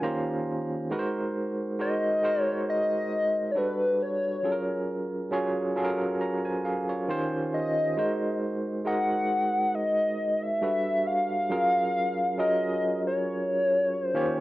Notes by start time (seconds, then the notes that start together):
0.02 D#3 A#3 C#4 F4 G4 C5 A#5
0.90 G#3 D#4 F#4 A#4 B4
0.99 C5
1.79 G#3 D#4 F#4 A#4 C5 D#5
2.23 G#3 D#4 F#4 A#4 C5
2.41 C#5
2.70 D#5
3.51 G3 D4 C#5
3.56 F#4 A4 B4
4.02 C#5
4.43 F#3 C#4 F4 G#4 A4
4.52 A#4
5.31 F#3 C#4 F4 G#4 C#5
5.76 F#3 C#4 F4 G#4 A4
5.85 A#4
6.21 C#5 A#5
6.45 C5 G#5
6.65 G#4 F5
6.89 F4 C#5
7.08 D#3 C#4 F4 G4 C5
7.54 D#5
7.97 G#3 D#4 F#4 A#4 C5
8.85 G#3 D#4 F#4 A#4 D#5 F#5
9.75 D#5
10.36 D#5
10.42 E5
10.62 G3 D4 F#4 A4 B4
11.07 F5
11.50 F#3 C#4 F4 G#4 A#4
12.38 F#3 C#4 F4 G#4 A#4 D#5
13.07 C#5
14.02 C5
14.14 D#3 A#3 C#4 F4 G4 C#5